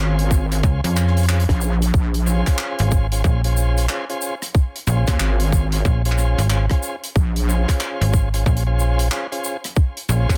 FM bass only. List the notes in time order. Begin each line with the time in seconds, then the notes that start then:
0.63 C#2
0.84 F2
2.80 G#1
3.24 A#1
4.87 A#1
5.85 A#1
6.38 G#1
8.01 G#1
8.46 A#1
10.09 A#1